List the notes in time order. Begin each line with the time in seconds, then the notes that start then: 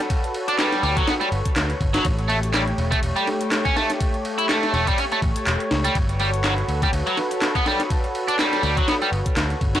Already playing: F#4 A4 B4 C#5
0.10 kick, closed hi-hat, ride
0.24 closed hi-hat
0.34 ride
0.48 D4, closed hi-hat
0.59 G3, snare, clap, closed hi-hat, ride
0.72 snare, closed hi-hat
0.83 D2 G3, ride
0.97 F#3, kick, closed hi-hat
1.08 B3, snare, closed hi-hat, ride
1.21 G3, closed hi-hat
1.32 G1, ride
1.46 muted picked electric bass stroke, kick, closed hi-hat
1.56 D2, snare, clap, closed hi-hat, ride
1.70 closed hi-hat
1.81 G1, kick, ride
1.94 F#3, snare, closed hi-hat, ride
2.05 A1 A3 G4, kick, closed hi-hat, ride
2.19 closed hi-hat
2.29 A3, ride
2.43 closed hi-hat
2.54 G3, snare, clap, closed hi-hat, ride
2.68 closed hi-hat
2.78 E1, ride
2.92 A3, kick, closed hi-hat
3.02 E1, closed hi-hat, ride
3.16 G3, closed hi-hat, ride
3.27 snare, ride
3.41 closed hi-hat, ride
3.52 snare, clap, closed hi-hat, ride
3.65 C#4, kick, closed hi-hat
3.76 A3, snare, ride
3.90 snare, closed hi-hat
4.00 kick, closed hi-hat, ride
4.14 closed hi-hat
4.25 ride
4.38 E4, closed hi-hat
4.49 A3, snare, clap, closed hi-hat, ride
4.63 snare, closed hi-hat
4.74 E1 A3, ride
4.87 G3, kick, closed hi-hat
4.98 C#4, closed hi-hat, ride
5.12 A3, closed hi-hat, ride
5.22 A1, kick, ride
5.36 muted picked electric bass stroke, closed hi-hat
5.47 E1, clap, closed hi-hat, ride
5.60 closed hi-hat
5.71 C#2, snare, ride
5.85 G3, closed hi-hat
5.95 G1 F#4 A4 B4, kick, closed hi-hat, ride
6.09 closed hi-hat
6.20 G3, ride
6.34 closed hi-hat
6.44 F#3, snare, clap, closed hi-hat, ride
6.58 closed hi-hat
6.68 D2, ride
6.82 G3, kick, closed hi-hat
6.93 D2, closed hi-hat, ride
7.07 F#3, closed hi-hat, ride
7.17 snare, ride
7.31 closed hi-hat, ride
7.42 snare, clap, closed hi-hat, ride
7.55 B3, kick, closed hi-hat
7.66 G3, snare, ride
7.80 snare, closed hi-hat
7.90 kick, closed hi-hat, ride
8.04 closed hi-hat
8.15 ride
8.28 D4, closed hi-hat
8.39 G3, snare, clap, closed hi-hat, ride
8.53 snare, closed hi-hat
8.63 D2 G3, ride
8.77 F#3, kick, closed hi-hat
8.88 B3, snare, closed hi-hat, ride
9.02 G3, closed hi-hat
9.12 G1, ride
9.26 muted picked electric bass stroke, kick, closed hi-hat
9.36 D2, snare, clap, closed hi-hat, ride
9.50 closed hi-hat
9.61 G1, kick, ride
9.75 F#3, snare, closed hi-hat, ride